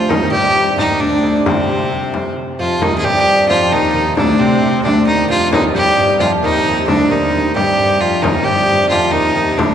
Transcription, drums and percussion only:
0.10 frame drum medium
0.33 frame drum soft
0.78 frame drum medium
1.01 frame drum soft
1.24 frame drum soft
1.46 frame drum medium
1.69 frame drum soft
1.92 frame drum soft
2.14 frame drum medium
2.37 frame drum soft
2.82 frame drum medium
3.04 frame drum soft
3.50 frame drum medium
3.73 frame drum soft
3.95 frame drum soft
4.17 frame drum medium
4.40 frame drum soft
4.85 frame drum medium
5.08 frame drum soft
5.31 frame drum soft
5.53 frame drum loud
5.76 frame drum soft
6.20 frame drum medium
6.43 frame drum soft
6.66 frame drum soft
6.88 frame drum medium
7.34 frame drum soft
7.56 frame drum medium
7.79 frame drum soft
8.24 frame drum medium
8.46 frame drum soft
8.91 frame drum medium
9.14 frame drum soft
9.36 frame drum soft
9.59 frame drum medium

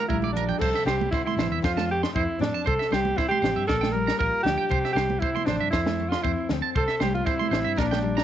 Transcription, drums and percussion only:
0.09 kick medium
0.09 high conga medium
0.22 high conga medium
0.35 closed hi-hat medium
0.35 low conga medium
0.49 low conga medium
0.61 kick medium
0.61 crash medium
0.74 snare soft
0.87 snare medium
1.01 high conga medium
1.13 kick medium
1.13 snare soft
1.27 high conga medium
1.39 snare medium
1.39 low conga medium
1.64 kick medium
1.64 snare medium
1.77 snare medium
1.77 high conga medium
2.03 snare medium
2.16 kick medium
2.41 snare medium
2.41 low conga medium
2.67 kick loud
2.81 snare soft
2.93 snare medium
3.05 high conga medium
3.18 kick medium
3.18 snare soft
3.31 high conga medium
3.44 snare medium
3.44 low conga medium
3.69 kick medium
3.69 snare medium
3.83 snare medium
3.83 high conga medium
4.08 snare medium
4.21 kick medium
4.46 snare medium
4.46 low conga medium
4.71 kick medium
4.85 snare soft
4.97 snare medium
5.10 high conga medium
5.22 kick medium
5.37 high conga medium
5.47 snare medium
5.47 low conga medium
5.73 kick medium
5.73 snare medium
5.86 snare medium
5.86 high conga medium
6.12 snare medium
6.24 kick medium
6.49 snare medium
6.49 low conga medium
6.76 kick medium
6.88 snare soft
7.01 snare medium
7.01 high conga medium
7.15 high conga medium
7.26 kick medium
7.26 snare soft
7.41 high conga medium
7.53 snare medium
7.78 kick medium
7.78 snare medium
7.93 snare medium
7.93 high conga medium
8.18 snare medium

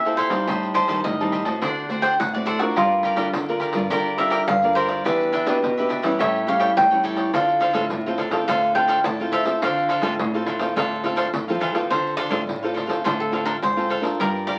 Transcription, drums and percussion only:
0.05 pandeiro soft
0.18 pandeiro medium
0.30 pandeiro medium
0.47 pandeiro medium
0.63 pandeiro soft
0.75 pandeiro medium
0.88 pandeiro medium
1.04 pandeiro medium
1.21 pandeiro soft
1.32 pandeiro medium
1.45 pandeiro medium
1.62 pandeiro medium
1.78 pandeiro soft
1.90 pandeiro soft
2.03 pandeiro medium
2.20 pandeiro medium
2.35 pandeiro soft
2.47 pandeiro soft
2.59 pandeiro medium
2.77 pandeiro medium
2.91 pandeiro soft
3.03 pandeiro medium
3.16 pandeiro medium
3.33 pandeiro medium
3.48 pandeiro soft
3.60 pandeiro medium
3.73 pandeiro medium
3.90 pandeiro medium
4.05 pandeiro soft
4.18 pandeiro medium
4.30 pandeiro medium
4.48 pandeiro loud
4.62 pandeiro soft
4.76 pandeiro soft
4.88 pandeiro medium
5.05 pandeiro medium
5.21 pandeiro soft
5.33 pandeiro medium
5.47 pandeiro medium
5.64 pandeiro medium
5.79 pandeiro soft
5.90 pandeiro medium
6.03 pandeiro medium
6.20 pandeiro medium
6.36 pandeiro soft
6.48 pandeiro medium
6.60 pandeiro medium
6.77 pandeiro loud
6.92 pandeiro soft
7.04 pandeiro medium
7.17 pandeiro medium
7.34 pandeiro medium
7.49 pandeiro soft
7.61 pandeiro medium
7.74 pandeiro medium
7.90 pandeiro medium
8.06 pandeiro soft
8.18 pandeiro medium
8.31 pandeiro medium
8.48 pandeiro medium
8.63 pandeiro soft
8.75 pandeiro medium
8.88 pandeiro medium
9.04 pandeiro medium
9.20 pandeiro soft
9.32 pandeiro medium
9.45 pandeiro medium
9.62 pandeiro medium
9.78 pandeiro soft
9.89 pandeiro medium
10.02 pandeiro medium
10.19 pandeiro medium
10.34 pandeiro soft
10.46 pandeiro medium
10.59 pandeiro medium
10.77 pandeiro medium
10.92 pandeiro soft
11.04 pandeiro medium
11.17 pandeiro medium
11.34 pandeiro medium
11.49 pandeiro soft
11.61 pandeiro medium
11.75 pandeiro medium
11.91 pandeiro medium
12.07 pandeiro soft
12.18 pandeiro medium
12.32 pandeiro medium
12.49 pandeiro medium
12.65 pandeiro soft
12.77 pandeiro medium
12.90 pandeiro medium
13.06 pandeiro medium
13.21 pandeiro soft
13.33 pandeiro medium
13.46 pandeiro medium
13.62 pandeiro medium
13.78 pandeiro soft
13.90 pandeiro soft
14.03 pandeiro medium
14.20 pandeiro medium
14.36 pandeiro soft
14.47 pandeiro medium

